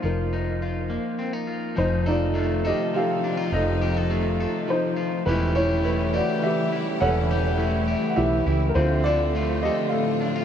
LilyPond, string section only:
\new Staff \with { instrumentName = "String section" } { \clef bass \time 3/4 \key f \mixolydian \tempo 4 = 103 << { r2. | <c ees f ees'>2.~ | <c ees f ees'>2. | <cis e g e'>2.~ |
<cis e g e'>2. | <d f f'>2. | } \\ { r2. | a2.~ | a2.~ | a2.~ |
a2. | c'2. | } >> }